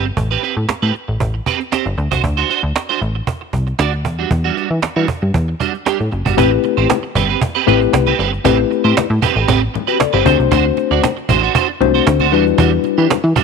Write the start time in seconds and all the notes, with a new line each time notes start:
Already playing: G1
0.06 muted clean electric guitar stroke
0.17 A1, muted clean electric guitar stroke, cajon bass
0.31 C4 G4 B4
0.43 C4 G4 B4, cajon slap
0.57 A2, muted clean electric guitar stroke
0.69 muted clean electric guitar stroke, cajon slap
0.82 A2 C4 G4 B4
0.94 muted clean electric guitar stroke, cajon slap
1.08 A1, muted clean electric guitar stroke
1.20 A1, cajon bass
1.34 muted clean electric guitar stroke
1.46 C4 G4 B4, cajon bass
1.60 muted clean electric guitar stroke, cajon slap
1.72 C4 G4 C5, cajon slap
1.85 G1, muted clean electric guitar stroke, cajon slap
1.98 D2, muted clean electric guitar stroke, cajon slap
2.11 C2 D4 F#4 C5, cajon bass
2.24 D2, muted clean electric guitar stroke, cajon bass
2.37 D4 F#4 C5
2.49 D4 F#4 C5, cajon slap
2.63 D2
2.76 muted clean electric guitar stroke, cajon slap
2.89 D4 F#4 C5
3.01 A1, muted clean electric guitar stroke, cajon slap
3.15 muted clean electric guitar stroke
3.27 muted clean electric guitar stroke, cajon bass
3.41 muted clean electric guitar stroke
3.53 C2, cajon bass
3.67 muted clean electric guitar stroke, cajon slap
3.79 D2 D4 F#4 D5, cajon slap
3.92 muted clean electric guitar stroke, cajon slap
4.05 E2, muted clean electric guitar stroke, cajon bass
4.19 G3 D4 F#4
4.31 E2, muted clean electric guitar stroke, cajon bass
4.44 G3 D4 F#4
4.57 G3 D4 F#4, cajon slap
4.70 E3, muted clean electric guitar stroke
4.82 muted clean electric guitar stroke, cajon slap
4.96 E3 G3 D4 F#4
5.08 muted clean electric guitar stroke, cajon bass
5.22 G2, muted clean electric guitar stroke
5.34 E2, cajon bass
5.48 muted clean electric guitar stroke
5.60 G3 D4 F#4, cajon bass
5.74 muted clean electric guitar stroke, cajon slap
5.86 G3 D4 G4, cajon slap
6.00 A2, muted clean electric guitar stroke, cajon slap
6.12 F#1, muted clean electric guitar stroke, cajon slap
6.25 G1 G3 D4 F#4, cajon bass
6.37 A1 A3 C4 E4 G4 B4, cajon bass, muted conga
6.51 muted clean electric guitar stroke
6.64 muted clean electric guitar stroke, cajon slap, muted conga
6.77 A1 C4 G4 C5, cajon slap
6.89 muted clean electric guitar stroke, cajon slap, high conga
7.03 muted clean electric guitar stroke, cajon slap
7.15 G1 C4 G4 B4, cajon bass, low conga
7.29 C4 G4 B4, cajon slap
7.41 cajon bass, muted conga
7.55 C4 G4 B4
7.67 A1 A3 C4 E4 G4 B4, cajon slap, low conga
7.81 muted clean electric guitar stroke, cajon slap
7.93 C2, muted clean electric guitar stroke, cajon slap, high conga
8.07 C4 G4 B4, high conga
8.19 G1 C4 G4 B4, cajon slap
8.33 muted clean electric guitar stroke, cajon slap
8.44 A1 A3 C4 E4 G4 B4, cajon bass, muted conga
8.59 muted clean electric guitar stroke
8.71 muted clean electric guitar stroke, cajon slap
8.84 A2 C4 G4 C5, cajon slap
8.97 cajon slap, high conga
9.10 A2, muted clean electric guitar stroke, cajon slap
9.22 C4 G4 B4, cajon bass, low conga
9.36 A1 C4 G4 B4, cajon slap
9.48 A1 C4 G4 B4, cajon bass, muted conga
9.62 muted clean electric guitar stroke
9.74 muted clean electric guitar stroke, cajon slap, low conga
9.87 C4 F#4 G4 B4, cajon slap
9.99 A4 D5, muted clean electric guitar stroke, cajon slap, high conga
10.13 G1 C4 G4 B4 C5, high conga
10.25 D2 A3 C4 D4 F#4 C5, cajon bass
10.39 C2, muted clean electric guitar stroke, cajon slap
10.51 D2 D4 F#4 C5, cajon bass, muted conga
10.65 muted clean electric guitar stroke
10.77 muted clean electric guitar stroke, cajon slap, muted conga
10.91 D2 D4 F#4 D5, cajon slap
11.03 muted clean electric guitar stroke, cajon slap, high conga
11.17 muted clean electric guitar stroke, cajon slap
11.29 A1 D4 F#4 C5, cajon bass, low conga
11.43 D4 F#4 C5, cajon slap
11.55 D4 F#4 C5, cajon bass, muted conga
11.68 muted clean electric guitar stroke
11.81 C2 A3 C4 D4 F#4 C5, muted clean electric guitar stroke, cajon slap, low conga
11.94 D4 F#4 C5, cajon slap
12.06 D2, muted clean electric guitar stroke, cajon slap, high conga
12.20 D4 F#4 C5, high conga
12.32 E2 G3 D4 E4 F#4 B4, cajon slap
12.46 muted clean electric guitar stroke, cajon slap
12.58 E2 G3 D4 F#4, cajon bass, muted conga
12.72 muted clean electric guitar stroke, cajon slap
12.84 muted clean electric guitar stroke, cajon slap, muted conga
12.98 E3 G3 D4 G4, cajon slap
13.10 muted clean electric guitar stroke, cajon slap, high conga
13.24 E3, muted clean electric guitar stroke, cajon slap
13.36 G3 D4 F#4, cajon bass, low conga